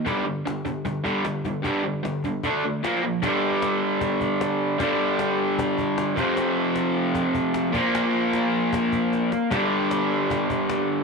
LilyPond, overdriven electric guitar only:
\new Staff \with { instrumentName = "Overdriven electric guitar" } { \clef bass \time 4/4 \key g \minor \tempo 4 = 152 <g, d g>8 <g, d>8 <g, d>8 <g, d>8 <g, d>8 <g, d g>8 <g, d>8 <g, d>8 | <g, d g>8 <g, d>8 <g, d>8 <g, d>8 <d a d'>8 <d a>8 <bes, f bes>8 <bes, f>8 | <g, d g>1 | <g, d g>2.~ <g, d g>8 <f, c f>8~ |
<f, c f>2.~ <f, c f>8 <bes, f bes>8~ | <bes, f bes>2.~ <bes, f bes>8 r8 | <g, d g>1 | }